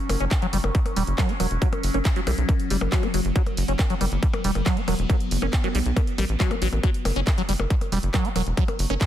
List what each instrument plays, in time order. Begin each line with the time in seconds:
Already playing: ambient pad F#3 C#4
0.09 analog synth bass F#1, open hi-hat, percussion blips
0.20 analog synth bass F#1, acid bass C#4, closed hi-hat
0.31 kick, clap, closed hi-hat, percussion blips
0.42 acid bass F#3, closed hi-hat
0.53 analog synth bass F#1, acid bass G3, open hi-hat
0.64 analog synth bass F#1, closed hi-hat, percussion blips
0.75 kick, closed hi-hat
0.86 closed hi-hat, percussion blips
0.96 analog synth bass E1, acid bass G3, open hi-hat
1.07 analog synth bass F#1, closed hi-hat
1.18 acid bass F#3, kick, clap, closed hi-hat, percussion blips
1.29 acid bass C#4, closed hi-hat
1.40 analog synth bass E1, acid bass F#3, open hi-hat, percussion blips
1.51 analog synth bass E1, closed hi-hat
1.62 acid bass F#3, kick, closed hi-hat
1.73 closed hi-hat, percussion blips
1.83 analog synth bass F#1, open hi-hat
1.94 analog synth bass F#1, acid bass C#4, closed hi-hat, percussion blips
2.05 kick, clap, closed hi-hat
2.16 acid bass F#3, closed hi-hat
2.27 analog synth bass B1, acid bass G3, open hi-hat, percussion blips
2.38 analog synth bass B1, closed hi-hat
2.49 kick, closed hi-hat, percussion blips
2.60 closed hi-hat
2.70 analog synth bass F#1, acid bass G3, open hi-hat
2.81 analog synth bass F#1, percussion blips
2.92 acid bass F#3, kick, clap, closed hi-hat
3.03 acid bass C#4, closed hi-hat, percussion blips
3.14 analog synth bass F#1, acid bass F#3, open hi-hat
3.25 analog synth bass F#1, closed hi-hat
3.36 acid bass F#3, ambient pad B3, kick, closed hi-hat
3.46 closed hi-hat, percussion blips
3.57 analog synth bass F#1, open hi-hat
3.68 analog synth bass F#1, acid bass C#4, closed hi-hat
3.79 kick, clap, closed hi-hat, percussion blips
3.90 acid bass F#3, closed hi-hat
4.01 analog synth bass F#1, acid bass G3, open hi-hat, percussion blips
4.12 analog synth bass F#1, closed hi-hat
4.23 kick, closed hi-hat
4.33 closed hi-hat, percussion blips
4.44 analog synth bass E1, acid bass G3, open hi-hat
4.55 analog synth bass F#1, closed hi-hat, percussion blips
4.66 acid bass F#3, kick, clap, closed hi-hat
4.77 acid bass C#4, closed hi-hat
4.88 analog synth bass E1, acid bass F#3, open hi-hat, percussion blips
4.99 analog synth bass E1, closed hi-hat
5.10 acid bass F#3, kick, closed hi-hat, percussion blips
5.20 closed hi-hat
5.31 analog synth bass F#1, open hi-hat
5.42 analog synth bass F#1, acid bass C#4, percussion blips
5.53 kick, clap, closed hi-hat
5.64 acid bass F#3, closed hi-hat, percussion blips
5.75 analog synth bass B1, acid bass G3, open hi-hat
5.86 analog synth bass B1, closed hi-hat
5.96 kick, closed hi-hat, percussion blips
6.07 closed hi-hat
6.18 analog synth bass A1, acid bass G3, open hi-hat, percussion blips
6.29 analog synth bass A1, closed hi-hat
6.40 acid bass F#3, kick, clap, closed hi-hat
6.51 acid bass C#4, closed hi-hat, percussion blips
6.62 analog synth bass A1, acid bass F#3, open hi-hat
6.73 analog synth bass A1, closed hi-hat, percussion blips
6.83 acid bass F#3, kick, closed hi-hat
6.94 closed hi-hat
7.05 analog synth bass F#1, open hi-hat, percussion blips
7.16 analog synth bass F#1, acid bass C#4, closed hi-hat
7.27 kick, clap, closed hi-hat, percussion blips
7.38 acid bass F#3, closed hi-hat
7.49 analog synth bass F#1, acid bass G3, open hi-hat
7.60 analog synth bass F#1, percussion blips
7.70 kick, closed hi-hat
7.81 closed hi-hat, percussion blips
7.92 analog synth bass E1, acid bass G3, open hi-hat
8.03 analog synth bass F#1, closed hi-hat
8.14 acid bass F#3, kick, clap, closed hi-hat, percussion blips
8.25 acid bass C#4, closed hi-hat
8.36 analog synth bass E1, acid bass F#3, open hi-hat, percussion blips
8.47 analog synth bass E1, closed hi-hat
8.57 acid bass F#3, kick, closed hi-hat
8.68 closed hi-hat, percussion blips
8.79 analog synth bass F#1, open hi-hat
8.90 analog synth bass F#1, acid bass C#4, closed hi-hat, percussion blips
9.01 kick, clap, closed hi-hat